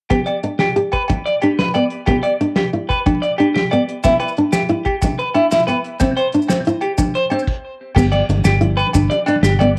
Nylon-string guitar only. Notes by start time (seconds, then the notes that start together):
0.10 B3
0.44 D4
0.76 G4
1.10 muted nylon-string guitar stroke
1.43 D4
1.75 B3
2.08 B3
2.41 D4
2.73 E4
3.06 D4
3.40 D4
3.73 B3
4.05 B3
4.38 D4
4.69 E4
5.04 D4
5.35 D4
5.68 B3
6.01 C4
6.34 D4
6.67 E4
6.98 D4
7.31 D4
7.97 B3
8.30 muted nylon-string guitar stroke
8.61 E4
8.95 D4
9.28 D4
9.61 B3